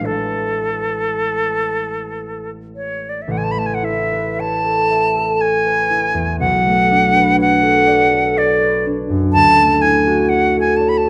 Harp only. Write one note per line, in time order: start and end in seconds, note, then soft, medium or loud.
0.00 3.26 A1 soft
0.00 3.29 G#3 soft
0.00 3.82 E4 soft
0.00 3.92 B4 soft
0.04 3.94 C#5 soft
3.28 6.44 A1 medium
3.56 6.64 A3 medium
3.83 5.89 E4 medium
4.12 5.65 B4 medium
4.39 5.40 C#5 medium
4.63 5.15 A4 medium
4.91 6.44 E5 medium
5.16 7.62 A4 medium
5.41 7.37 C#5 medium
5.66 7.14 B4 medium
5.90 6.44 E4 medium
6.14 6.43 E2 medium
6.40 9.37 B1 medium
6.65 9.58 A3 medium
6.91 8.85 D4 medium
7.15 8.60 B4 medium
7.38 8.35 C#5 medium
7.63 8.10 A4 medium
7.87 11.10 D5 medium
8.11 10.53 A4 medium
8.36 10.29 C#5 medium
8.61 9.37 B4 medium
8.87 11.10 D4 medium
9.10 9.37 F#2 medium
9.34 11.10 D2 medium
9.60 11.10 A3 medium
9.83 11.10 E4 medium
10.07 11.10 F#4 medium
10.30 10.79 C#5 medium
10.54 11.04 A4 medium
10.80 11.10 C#5 medium
11.05 11.10 A4 medium